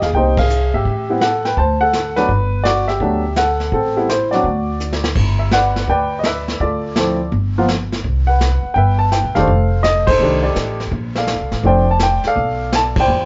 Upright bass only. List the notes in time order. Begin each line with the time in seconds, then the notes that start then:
0.01 D#2
0.14 C2
0.74 G#1
0.85 A1
1.57 D2
2.29 G1
3.00 D2
3.72 A1
4.44 D2
5.15 G1
5.87 D2
6.60 D2
7.32 G1
8.04 C2
8.63 muted upright bass stroke
8.76 G1
9.24 B1
9.35 E1
9.48 F1
10.19 C2
10.55 A1
10.91 A#1
11.39 C2
11.51 A1
11.63 F1
12.24 muted upright bass stroke
12.36 B1
13.08 E2